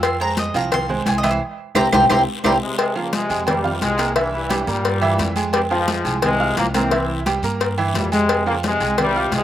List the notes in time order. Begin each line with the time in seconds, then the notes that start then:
Already playing: F2 F3 F4 F5
0.03 C6, cowbell, high conga, low agogo, long guiro, claves
0.20 G#3 G#4 C5 A#5, high conga, low agogo
0.37 D#5, cowbell, high conga, short guiro
0.54 C2 F3 F4 F5 A#5, high conga, low agogo, short guiro
0.71 C6, cowbell, high conga, low conga, low agogo, long guiro, claves
0.89 G#3 G#4 C5, high conga, low conga
1.06 C2 G#5, cowbell, high conga, low agogo, short guiro
1.18 D#5
1.23 E3 E4 E5, cowbell, high conga, low agogo, short guiro, claves
1.31 C5
1.75 C2 C4 E4 G4 G5 A#5 C6, cowbell, high conga, high timbale, long guiro, claves
1.92 C2 C4 E4 G4 G5 A#5 C6, cowbell, high conga, high timbale, long guiro, claves
2.10 C2 C4 E4 G4 G5 A#5 C6, cowbell, high conga, high timbale, long guiro, claves
2.44 C2 A#2 G3 C4 E4 G4 G5 A#5 C6, cowbell, high conga, high timbale, long guiro, claves
2.62 C3 G#3
2.78 C3 G#3, cowbell, high conga, low agogo, long guiro
2.95 C#3 F3 A#3 F4 F5, high conga, low agogo
3.13 C3 G#3, cowbell, high conga, short guiro
3.29 F2 G#3 G#4 G#5, high conga, low agogo, short guiro
3.46 C3 G3, cowbell, high conga, low conga, low agogo, long guiro
3.64 F4 F5 F6, high conga, low conga
3.81 C2 C3 G#3, cowbell, high conga, low agogo, short guiro
3.98 A#3 A#4 A#5, cowbell, low agogo, short guiro
4.16 G2 E3 E4 E5, cowbell, high conga, long guiro
4.32 G2 E3, high conga
4.50 G3 G4 G5, cowbell, high conga, low agogo, short guiro
4.67 G2 A#2 G3 A#3 A#4 A#5, short guiro
4.84 cowbell, high conga, low agogo, long guiro
5.01 E3 E4 E5, high conga, low agogo
5.18 F2, cowbell, high conga, short guiro
5.36 G#3 G#4 G#5, high conga, low agogo, short guiro
5.53 C3 G3, cowbell, high conga, low agogo, long guiro
5.70 G#2 F3 F4 F5, high conga, low agogo
5.88 cowbell, high conga, short guiro
6.05 C2 G#3 G#4 G#5, high conga, low agogo, short guiro
6.22 C3 G#3, cowbell, high conga, low conga, low agogo, long guiro
6.40 F4 F5 F6, high conga
6.57 C2 F3 A#3, cowbell, high conga, low timbale, low agogo, short guiro
6.74 E3 A#3 C4 A#4 A#5, cowbell, high conga, low agogo, short guiro
6.91 E3 E4 E5, cowbell, high conga, long guiro
7.09 high conga
7.26 G3 G4 G5, cowbell, high conga, low agogo, short guiro
7.42 G2 A#3 A#4 A#5, short guiro
7.60 cowbell, high conga, low agogo, long guiro
7.78 E3 E4 E5, high conga, low agogo
7.94 F2 A#2 G3, cowbell, high conga, low timbale, short guiro
8.12 C3 G#3 G#4 G#5, high conga, low agogo, short guiro
8.29 cowbell, low agogo, long guiro, claves
8.46 C#3 F3 A#3 F4 F5, high conga, low agogo
8.63 C3 G#3, cowbell, high conga, short guiro
8.80 C2 G#3 G#4 G#5, high conga, low agogo, short guiro
8.97 C3 G3, cowbell, high conga, low conga, low agogo, long guiro, claves
9.15 F4 F5 F6, high conga
9.31 C2 C3 G#3, cowbell, high conga, low agogo, short guiro